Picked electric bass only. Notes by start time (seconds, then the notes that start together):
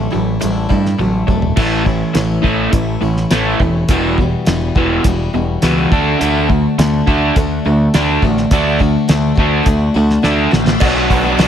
0.15 A1
0.44 A1
0.71 G2
1.00 A1
1.28 E1
1.57 A1
2.15 A1
2.45 A1
2.73 A1
3.02 A1
3.31 A1
3.60 E1
3.89 E1
4.47 E1
4.76 E1
5.05 E1
5.34 E1
5.63 C#2
5.92 D2
6.21 D2
6.78 D2
7.08 D2
7.36 D2
7.66 D2
7.95 D2
8.22 A1
8.51 D2
9.10 D2
9.38 D2
9.66 D2
9.95 D2
10.24 D2
10.53 A1
10.81 B1
11.10 B1
11.39 B1